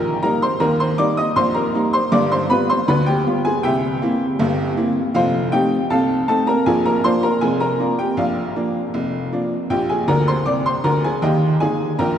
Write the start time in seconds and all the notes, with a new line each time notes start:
Already playing: A#1 A#2 A#4 G5 A#5
0.23 G3 A#3 D#4 A#4 A#5
0.42 C5 C6
0.60 D#2 D#3 A#4 A#5
0.80 C5 C6
0.98 G3 A#3 D#4 D5 D6
1.17 D#5 D#6
1.36 A#1 A#2 C5 C6
1.54 A#4 A#5
1.74 G3 A#3 D#4
1.93 C5 C6
2.12 G1 G2 D5 D6
2.32 C5 C6
2.50 G3 B3 F4 B4 B5
2.69 C5 C6
2.88 D2 D3 B4 B5
3.06 G4 G5
3.26 G3 B3 F4
3.45 G#4 G#5
3.63 C2 C3 G4 E5 G5
4.02 A#3 C4 E4
4.39 G1 G2
4.77 A#3 C4 E4
5.14 F1 F2 F4 C5 F5
5.52 A3 C4 D#4 G4 G5
5.90 C2 C3 A4 F5 A5
6.28 A3 C4 D#4 A4 A5
6.47 A#4 A#5
6.66 A#1 A#2 G#4 G#5
6.86 A#4 A#5
7.04 F3 A#3 D4 C5 C6
7.23 A#4 A#5
7.41 F1 F2 G#4 G#5
7.60 A#4 A#5
7.79 F3 A#3 D4
7.99 G4 G5
8.17 A#1 A#2 F4 D5 F5
8.56 F3 A#3 D4
8.94 F1 F2
9.32 F3 A#3 D4
9.70 A#1 A#2 G4 G5
9.89 G#4 G#5
10.08 D2 D3 A#4 A#5
10.28 C5 C6
10.46 C2 C3 D5 D6
10.66 C5 C6
10.84 D2 D3 A#4 A#5
11.04 G#4 G#5
11.22 D#2 D#3 G4 D#5 G5
11.60 D#3 A#3 D#4 G#4 G#5
11.99 A#1 A#2 A#4 G5 A#5